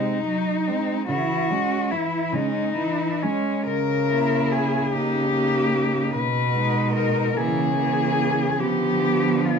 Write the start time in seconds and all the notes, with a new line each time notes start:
Already playing: C3 G#3 C4 D#4
0.25 F#3 D#4
0.68 G#3 C4
1.09 C#3 E3 E4 F#4
1.51 G#3 C#4
1.91 E3 E4
2.33 C#3 G#3 C#4 D#4
2.75 E3 E4
3.22 G#3 C#4
3.67 C#3 A#4
4.09 A#3 E4
4.52 G#4
4.93 C#3 A#3 D#4 G4
5.33 A#3 D#4
6.15 B2 B4
6.55 G#3 D#4
6.96 A#4
7.36 C#3 E3 A#3 G#4
7.76 E3 A#3
8.60 D3 F3 B3 G4
9.45 F4